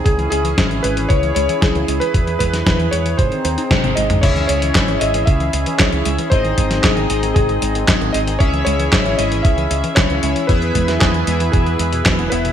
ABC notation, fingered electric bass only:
X:1
M:4/4
L:1/16
Q:1/4=115
K:C#m
V:1 name="Fingered electric bass" clef=bass
C,,2 C,,2 G,,,2 G,,,2 C,,2 C,, z C,, C,, C,, z | E,,2 E,,2 E,,2 E,,2 G,,, z D,, z G,,, G,,, G,,,2 | C,,2 C,,2 z2 G,,,2 C,,2 C,, z C,, C,, C,, z | G,,,2 G,,,2 G,,,2 G,,,2 G,,,2 G,,,2 G,,, G,,, G,,,2 |
C,,2 C,,2 G,,,2 G,,,2 C,,2 C,, z C,, C,, C,, z | E,,2 E,,2 E,,2 E,,2 E,,2 E,,2 E,, E,,, E,,,2 |]